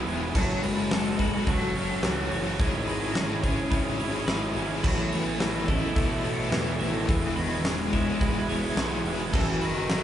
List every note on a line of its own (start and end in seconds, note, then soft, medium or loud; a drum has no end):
0.00 0.33 E3 loud
0.00 0.35 B3 medium
0.00 0.35 E4 medium
0.00 0.31 B4 medium
0.00 0.35 B4 medium
0.00 0.31 E5 medium
0.00 0.32 G#5 medium
0.00 0.31 E6 loud
0.06 0.32 E1 loud
0.06 0.33 G#3 medium
0.06 0.23 B3 medium
0.06 0.21 E4 medium
0.06 0.19 G#4 medium
0.06 open hi-hat medium
0.20 0.35 B3 medium
0.20 0.34 E4 medium
0.20 0.33 G#4 medium
0.34 1.33 F#1 loud
0.34 1.76 F#2 medium
0.34 0.61 F#3 medium
0.34 0.64 F#3 loud
0.34 0.51 C#4 loud
0.34 0.49 F#4 loud
0.34 0.63 A4 loud
0.34 0.47 A4 loud
0.34 4.80 C#5 medium
0.34 2.58 F#5 medium
0.34 2.58 A5 medium
0.34 4.80 C#6 loud
0.34 kick loud
0.34 crash loud
0.49 0.64 C#4 medium
0.49 0.64 F#4 medium
0.49 0.65 A4 medium
0.62 0.89 F#3 medium
0.62 1.49 G#3 loud
0.62 0.79 C#4 medium
0.62 0.77 F#4 medium
0.62 0.75 A4 medium
0.62 0.91 B4 medium
0.62 open hi-hat medium
0.77 0.91 C#4 medium
0.77 0.91 F#4 medium
0.77 0.92 A4 medium
0.90 1.17 F#3 loud
0.90 1.19 C#4 loud
0.90 1.20 F#4 loud
0.90 1.20 A4 medium
0.90 1.21 A4 loud
0.90 snare loud
0.90 open hi-hat loud
1.18 1.74 F#3 medium
1.18 1.62 C#4 medium
1.18 1.61 F#4 loud
1.18 1.59 A4 medium
1.18 1.47 B4 medium
1.18 kick medium
1.18 open hi-hat medium
1.33 1.46 C#4 medium
1.33 1.47 F#4 medium
1.33 1.48 A4 medium
1.46 1.96 F#1 medium
1.46 1.73 F#3 medium
1.46 2.07 F#3 loud
1.46 2.31 A3 medium
1.46 1.62 C#4 medium
1.46 1.60 F#4 medium
1.46 1.59 A4 medium
1.46 2.03 C#5 medium
1.46 kick loud
1.46 open hi-hat medium
1.60 1.75 C#4 medium
1.60 1.76 F#4 medium
1.60 1.77 A4 medium
1.75 2.02 F#3 medium
1.75 1.91 C#4 medium
1.75 1.89 F#4 medium
1.75 1.88 A4 medium
1.75 open hi-hat medium
1.89 2.03 C#4 medium
1.89 2.04 F#4 medium
1.89 2.05 A4 medium
2.03 2.28 C#2 medium
2.03 2.60 E3 loud
2.03 2.30 F#3 medium
2.03 2.31 C#4 loud
2.03 2.32 F#4 loud
2.03 2.33 A4 loud
2.03 snare loud
2.03 open hi-hat medium
2.31 2.56 F#1 medium
2.31 2.58 F#3 medium
2.31 2.60 A3 medium
2.31 2.46 C#4 medium
2.31 2.45 F#4 medium
2.31 2.43 A4 medium
2.31 2.87 C#5 medium
2.31 open hi-hat medium
2.45 2.59 C#4 medium
2.45 2.58 F#4 medium
2.45 2.57 A4 medium
2.59 3.57 G#1 loud
2.59 4.00 G#2 medium
2.59 3.48 D#3 loud
2.59 2.86 G#3 loud
2.59 2.75 C#4 medium
2.59 2.74 E4 medium
2.59 4.83 G#4 medium
2.59 2.71 G#4 loud
2.59 4.82 E5 medium
2.59 kick loud
2.59 open hi-hat medium
2.73 2.87 C#4 medium
2.73 2.89 E4 medium
2.73 2.89 G#4 medium
2.87 3.13 G#3 medium
2.87 3.03 C#4 medium
2.87 3.02 E4 medium
2.87 3.00 G#4 medium
2.87 3.42 B4 medium
2.87 open hi-hat medium
3.01 3.14 C#4 medium
3.01 3.16 E4 medium
3.01 3.17 G#4 medium
3.14 3.42 G#3 medium
3.14 3.43 C#4 loud
3.14 3.45 E4 loud
3.14 3.45 G#4 loud
3.14 snare loud
3.14 open hi-hat medium
3.43 4.57 C#3 medium
3.43 3.97 G#3 medium
3.43 3.87 C#4 medium
3.43 3.86 E4 medium
3.43 3.84 G#4 medium
3.43 3.70 C#5 medium
3.43 kick loud
3.43 open hi-hat medium
3.55 3.69 C#4 medium
3.55 3.71 E4 medium
3.55 3.71 G#4 medium
3.69 4.21 G#1 medium
3.69 3.97 G#3 medium
3.69 3.86 C#4 medium
3.69 4.56 C#4 medium
3.69 3.85 E4 medium
3.69 3.83 G#4 medium
3.69 3.99 B4 medium
3.69 kick loud
3.69 open hi-hat medium
3.85 3.99 C#4 medium
3.85 4.00 E4 medium
3.85 4.00 G#4 medium
3.98 4.25 G#3 medium
3.98 4.15 C#4 medium
3.98 4.14 E4 medium
3.98 4.11 G#4 medium
3.98 4.26 C#5 medium
3.98 open hi-hat medium
4.12 4.26 C#4 medium
4.12 4.28 E4 medium
4.12 4.29 G#4 medium
4.27 4.52 G#1 medium
4.27 4.54 G#3 medium
4.27 4.55 C#4 medium
4.27 4.57 E4 loud
4.27 4.57 G#4 loud
4.27 4.82 B4 medium
4.27 snare loud
4.27 open hi-hat medium
4.55 4.80 G#1 medium
4.55 4.82 G#3 medium
4.55 4.72 C#4 medium
4.55 4.71 E4 medium
4.55 4.68 G#4 medium
4.55 open hi-hat medium
4.70 4.84 C#4 medium
4.70 4.85 E4 medium
4.70 4.82 G#4 medium
4.83 5.82 A1 loud
4.83 6.25 A2 medium
4.83 5.14 F#3 loud
4.83 5.10 A3 medium
4.83 5.00 B3 loud
4.83 4.98 E4 medium
4.83 7.06 A4 medium
4.83 4.96 A4 loud
4.83 5.11 B4 loud
4.83 9.29 B4 medium
4.83 7.06 E5 medium
4.83 7.06 B5 loud
4.83 kick loud
4.83 crash loud
4.97 5.12 B3 medium
4.97 5.13 E4 medium
4.97 5.13 A4 medium
5.11 6.51 E3 medium
5.11 5.41 E3 medium
5.11 5.38 A3 medium
5.11 5.27 B3 medium
5.11 5.26 E4 medium
5.11 5.23 A4 medium
5.11 5.40 C#5 medium
5.11 open hi-hat medium
5.24 5.40 B3 medium
5.24 5.41 E4 medium
5.24 5.41 A4 medium
5.39 5.69 D#3 medium
5.39 5.66 A3 medium
5.39 5.67 B3 loud
5.39 5.69 E4 loud
5.39 5.69 A4 loud
5.39 7.36 B4 medium
5.39 snare loud
5.39 open hi-hat loud
5.67 5.96 C#3 medium
5.67 6.22 A3 medium
5.67 6.10 B3 medium
5.67 6.09 E4 medium
5.67 6.08 A4 medium
5.67 5.95 D#5 medium
5.67 kick loud
5.67 open hi-hat medium
5.81 5.96 B3 medium
5.81 5.97 E4 medium
5.81 5.98 A4 medium
5.96 6.45 A1 medium
5.96 6.83 B2 loud
5.96 6.79 A3 medium
5.96 6.22 A3 medium
5.96 6.11 B3 medium
5.96 6.10 E4 medium
5.96 6.08 A4 medium
5.96 6.52 E5 medium
5.96 kick loud
5.96 open hi-hat medium
6.09 6.23 B3 medium
6.09 6.24 E4 medium
6.09 6.25 A4 medium
6.23 6.50 A3 medium
6.23 6.40 B3 medium
6.23 6.38 E4 medium
6.23 6.36 A4 medium
6.23 open hi-hat medium
6.37 6.52 B3 medium
6.37 6.53 E4 medium
6.37 6.54 A4 medium
6.52 6.76 E2 medium
6.52 7.09 E3 medium
6.52 6.78 A3 loud
6.52 6.80 B3 loud
6.52 6.80 E4 loud
6.52 6.81 A4 loud
6.52 snare loud
6.52 open hi-hat medium
6.79 7.05 A1 loud
6.79 7.11 D#3 loud
6.79 7.06 A3 medium
6.79 6.96 B3 medium
6.79 6.95 E4 medium
6.79 6.93 A4 loud
6.79 7.35 E5 medium
6.79 open hi-hat medium
6.94 7.07 B3 medium
6.94 7.08 E4 medium
6.94 7.07 A4 medium
7.07 8.06 E1 loud
7.07 8.49 E2 medium
7.07 7.50 E3 loud
7.07 7.39 E3 loud
7.07 7.34 G#3 loud
7.07 7.23 B3 loud
7.07 7.22 E4 loud
7.07 9.31 G#4 medium
7.07 7.20 G#4 loud
7.07 9.31 E5 medium
7.07 9.31 B5 loud
7.07 kick loud
7.07 open hi-hat medium
7.21 7.36 B3 medium
7.21 7.37 E4 medium
7.21 7.38 G#4 medium
7.36 7.67 D#3 loud
7.36 8.75 E3 medium
7.36 7.63 G#3 medium
7.36 7.51 B3 medium
7.36 7.50 E4 medium
7.36 7.48 G#4 medium
7.36 7.92 B4 medium
7.36 open hi-hat medium
7.49 7.64 B3 medium
7.49 7.64 E4 medium
7.49 7.65 G#4 medium
7.63 8.20 E3 loud
7.63 7.91 G#3 medium
7.63 9.06 G#3 loud
7.63 7.92 B3 loud
7.63 7.94 E4 loud
7.63 7.95 G#4 loud
7.63 snare loud
7.63 open hi-hat loud
7.92 8.47 G#3 medium
7.92 8.36 B3 medium
7.92 8.34 E4 medium
7.92 8.32 G#4 medium
7.92 8.20 C#5 medium
7.92 kick medium
7.92 open hi-hat medium
8.07 8.21 B3 medium
8.07 8.22 E4 medium
8.07 8.22 G#4 medium
8.20 8.70 E1 loud
8.20 9.04 G#3 medium
8.20 8.48 G#3 medium
8.20 8.37 B3 medium
8.20 8.36 E4 medium
8.20 8.34 G#4 medium
8.20 8.49 B4 loud
8.20 kick loud
8.20 open hi-hat medium
8.34 8.48 B3 medium
8.34 8.49 E4 medium
8.34 8.50 G#4 medium
8.48 8.75 G#3 medium
8.48 8.64 B3 medium
8.48 8.63 E4 medium
8.48 8.61 G#4 medium
8.48 8.76 C#5 medium
8.48 open hi-hat medium
8.62 8.76 B3 medium
8.62 8.77 E4 medium
8.62 8.78 G#4 medium
8.76 9.01 B1 medium
8.76 9.31 E3 loud
8.76 9.03 G#3 loud
8.76 9.04 B3 loud
8.76 9.05 E4 loud
8.76 9.06 G#4 loud
8.76 9.32 B4 medium
8.76 snare loud
8.76 open hi-hat medium
9.04 9.29 E1 loud
9.04 9.31 G#3 medium
9.04 9.21 B3 loud
9.04 9.19 E4 medium
9.04 9.17 G#4 medium
9.04 open hi-hat medium
9.19 9.33 B3 medium
9.19 9.32 E4 medium
9.19 9.31 G#4 medium
9.33 10.03 F#1 loud
9.33 10.03 F#2 medium
9.33 9.67 E3 loud
9.33 9.60 F#3 loud
9.33 9.50 C#4 loud
9.33 9.48 F#4 loud
9.33 10.03 A4 loud
9.33 9.61 A4 loud
9.33 9.46 A4 loud
9.33 10.03 C#5 medium
9.33 10.03 F#5 medium
9.33 10.03 C#6 loud
9.33 kick loud
9.33 crash loud
9.48 9.63 C#4 medium
9.48 9.63 F#4 medium
9.48 9.64 A4 medium
9.61 10.03 D#3 loud
9.61 9.88 F#3 medium
9.61 9.78 C#4 medium
9.61 9.76 F#4 medium
9.61 9.89 B4 medium
9.61 open hi-hat medium
9.66 9.73 A4 medium
9.75 9.90 C#4 medium
9.75 9.90 F#4 medium
9.75 9.91 A4 medium
9.89 10.03 F#3 medium
9.89 10.03 A3 medium
9.89 10.03 C#4 loud
9.89 10.03 F#4 loud
9.89 10.03 A4 medium
9.89 10.03 A4 loud
9.89 snare loud
9.89 open hi-hat medium